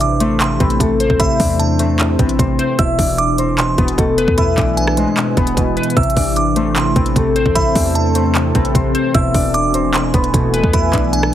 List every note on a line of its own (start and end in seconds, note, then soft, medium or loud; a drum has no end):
0.00 0.32 A1 loud
0.00 0.40 C3 medium
0.00 2.76 C3 medium
0.00 0.80 E3 medium
0.00 9.11 E3 medium
0.00 0.81 A3 medium
0.00 2.76 A3 medium
0.00 0.26 B3 medium
0.00 1.40 D4 medium
0.00 1.20 E4 medium
0.00 2.76 E4 medium
0.00 0.26 B4 medium
0.00 1.39 D5 medium
0.00 1.19 E5 loud
0.00 0.38 D6 medium
0.00 closed hi-hat medium
0.20 1.20 A3 medium
0.20 0.66 C4 medium
0.20 0.66 C5 medium
0.20 closed hi-hat medium
0.30 0.59 G#1 loud
0.40 0.79 C3 medium
0.40 1.16 C6 medium
0.40 clap loud
0.40 closed hi-hat medium
0.60 0.79 A1 loud
0.60 1.85 B3 medium
0.60 1.60 C4 medium
0.60 1.85 B4 medium
0.60 kick loud
0.60 closed hi-hat medium
0.70 closed hi-hat medium
0.80 1.09 A1 loud
0.80 1.19 C3 medium
0.80 3.98 A3 medium
0.80 3.00 A4 medium
0.80 kick loud
0.80 closed hi-hat medium
1.00 1.99 C5 medium
1.00 closed hi-hat medium
1.10 1.39 A1 loud
1.10 kick medium
1.19 1.58 C3 medium
1.19 2.79 E4 medium
1.19 2.78 E5 loud
1.19 1.57 B5 loud
1.19 kick loud
1.19 closed hi-hat medium
1.40 2.16 E2 loud
1.40 2.39 E3 medium
1.40 2.99 D4 medium
1.40 2.98 D5 medium
1.40 kick loud
1.40 open hi-hat medium
1.59 1.98 C3 medium
1.59 2.35 A5 medium
1.59 closed hi-hat medium
1.79 2.79 A3 medium
1.79 2.25 C4 medium
1.79 2.25 C5 medium
1.79 closed hi-hat medium
1.99 2.38 C3 medium
1.99 clap loud
1.99 closed hi-hat medium
2.19 2.38 A1 loud
2.19 2.45 B3 medium
2.19 2.79 C4 medium
2.19 2.45 B4 medium
2.19 kick loud
2.19 closed hi-hat medium
2.29 closed hi-hat medium
2.39 2.58 A1 loud
2.39 2.79 C3 medium
2.39 3.39 C4 medium
2.39 3.38 C5 medium
2.39 kick loud
2.39 closed hi-hat medium
2.59 2.79 C5 medium
2.59 closed hi-hat medium
2.79 2.98 E1 loud
2.79 3.57 B2 medium
2.79 4.38 E4 medium
2.79 4.38 E5 loud
2.79 5.94 G#5 medium
2.79 3.16 E6 medium
2.79 kick loud
2.79 closed hi-hat medium
2.99 3.75 E1 loud
2.99 3.98 E3 medium
2.99 4.58 D4 medium
2.99 4.58 D5 medium
2.99 kick loud
2.99 open hi-hat medium
3.18 3.56 D6 loud
3.18 closed hi-hat medium
3.38 3.85 C4 medium
3.38 3.85 C5 medium
3.38 closed hi-hat medium
3.58 3.97 B2 medium
3.58 4.34 C6 medium
3.58 clap loud
3.58 closed hi-hat medium
3.78 3.97 E1 loud
3.78 4.78 B3 medium
3.78 5.03 B3 medium
3.78 5.03 B4 medium
3.78 kick loud
3.78 closed hi-hat medium
3.88 closed hi-hat medium
3.98 4.27 E1 loud
3.98 4.97 B2 loud
3.98 7.17 A3 medium
3.98 6.18 A4 medium
3.98 kick loud
3.98 closed hi-hat medium
4.18 5.17 B4 loud
4.18 closed hi-hat medium
4.28 4.56 E2 loud
4.28 kick medium
4.38 5.97 E4 medium
4.38 5.96 E5 loud
4.38 4.75 B5 loud
4.38 kick loud
4.38 closed hi-hat medium
4.58 5.05 B1 loud
4.58 5.57 E3 medium
4.58 6.17 D4 medium
4.58 6.16 D5 medium
4.58 kick loud
4.58 clap medium
4.58 closed hi-hat medium
4.77 5.93 G#5 loud
4.77 closed hi-hat medium
4.87 cross-stick loud
4.97 5.97 G#3 medium
4.97 5.43 C4 medium
4.97 5.43 C5 medium
4.97 closed hi-hat medium
5.17 5.56 B2 medium
5.17 clap loud
5.17 closed hi-hat medium
5.37 5.56 E1 loud
5.37 5.97 B3 medium
5.37 5.58 B3 medium
5.37 5.57 B4 medium
5.37 kick loud
5.37 closed hi-hat soft
5.47 closed hi-hat medium
5.57 5.76 E1 loud
5.57 5.97 B2 loud
5.57 6.62 B3 medium
5.57 6.62 B4 medium
5.57 kick loud
5.57 closed hi-hat medium
5.77 5.97 B4 medium
5.77 closed hi-hat soft
5.83 closed hi-hat soft
5.90 closed hi-hat medium
5.96 6.16 A1 loud
5.96 6.35 C3 loud
5.96 9.11 A3 medium
5.96 9.11 C4 medium
5.96 7.55 E4 medium
5.96 9.11 A4 medium
5.96 7.55 E5 loud
5.96 6.34 E6 loud
5.96 kick loud
5.96 closed hi-hat medium
6.03 closed hi-hat medium
6.10 closed hi-hat medium
6.16 6.68 A1 loud
6.16 7.16 E3 medium
6.16 7.76 D4 medium
6.16 7.75 D5 medium
6.16 kick loud
6.16 open hi-hat medium
6.36 6.75 C3 medium
6.36 6.74 D6 medium
6.36 closed hi-hat medium
6.56 7.56 A3 medium
6.56 7.02 C4 medium
6.56 7.02 C5 medium
6.56 closed hi-hat medium
6.66 6.95 G#1 loud
6.76 7.15 C3 medium
6.76 7.52 C6 medium
6.76 clap loud
6.76 closed hi-hat medium
6.96 7.15 A1 loud
6.96 8.21 B3 medium
6.96 7.95 C4 medium
6.96 8.21 B4 medium
6.96 kick loud
6.96 closed hi-hat medium
7.06 closed hi-hat medium
7.16 7.45 A1 loud
7.16 7.54 C3 medium
7.16 10.34 A3 medium
7.16 9.36 A4 medium
7.16 kick loud
7.16 closed hi-hat medium
7.36 8.35 C5 medium
7.36 closed hi-hat medium
7.46 7.74 A1 loud
7.46 kick medium
7.55 7.94 C3 medium
7.55 9.15 E4 medium
7.55 9.14 E5 loud
7.55 7.93 B5 loud
7.55 kick loud
7.55 closed hi-hat medium
7.75 8.52 E2 loud
7.75 8.75 E3 medium
7.75 9.35 D4 medium
7.75 9.34 D5 medium
7.75 kick loud
7.75 open hi-hat medium
7.95 8.34 C3 medium
7.95 8.71 A5 medium
7.95 closed hi-hat medium
8.15 9.15 A3 medium
8.15 8.61 C4 medium
8.15 8.61 C5 medium
8.15 closed hi-hat medium
8.35 8.74 C3 medium
8.35 clap loud
8.35 closed hi-hat medium
8.55 8.74 A1 loud
8.55 8.81 B3 medium
8.55 9.15 C4 medium
8.55 8.81 B4 medium
8.55 kick loud
8.55 closed hi-hat medium
8.65 closed hi-hat medium
8.75 8.94 A1 loud
8.75 9.15 C3 medium
8.75 9.75 C4 medium
8.75 9.74 C5 medium
8.75 kick loud
8.75 closed hi-hat medium
8.95 9.15 C5 medium
8.95 closed hi-hat medium
9.14 9.34 E1 loud
9.14 9.93 B2 loud
9.14 11.34 E3 medium
9.14 10.74 E4 medium
9.14 10.73 E5 loud
9.14 11.34 G#5 medium
9.14 9.52 E6 loud
9.14 kick loud
9.14 closed hi-hat medium
9.34 10.11 E1 loud
9.34 10.34 E3 medium
9.34 10.94 D4 medium
9.34 10.93 D5 medium
9.34 kick loud
9.34 open hi-hat medium
9.54 9.92 D6 loud
9.54 closed hi-hat medium
9.74 10.20 C4 medium
9.74 10.20 C5 medium
9.74 closed hi-hat medium
9.94 10.33 B2 medium
9.94 10.70 C6 medium
9.94 clap loud
9.94 closed hi-hat medium
10.14 10.33 E1 loud
10.14 11.13 B3 medium
10.14 11.34 B3 medium
10.14 11.34 B4 medium
10.14 kick loud
10.14 closed hi-hat medium
10.24 closed hi-hat medium
10.34 10.62 E1 loud
10.34 11.33 B2 loud
10.34 11.34 A3 medium
10.34 11.34 A4 medium
10.34 kick loud
10.34 closed hi-hat loud
10.54 11.34 B4 medium
10.54 closed hi-hat medium
10.63 10.92 E2 loud
10.63 kick medium
10.73 11.34 E4 medium
10.73 11.34 E5 loud
10.73 11.11 B5 loud
10.73 kick loud
10.73 closed hi-hat medium
10.93 11.34 B1 loud
10.93 11.34 E3 medium
10.93 11.34 D4 medium
10.93 11.34 D5 medium
10.93 kick loud
10.93 clap medium
10.93 closed hi-hat medium
11.13 11.34 G#5 loud
11.13 closed hi-hat medium
11.23 cross-stick loud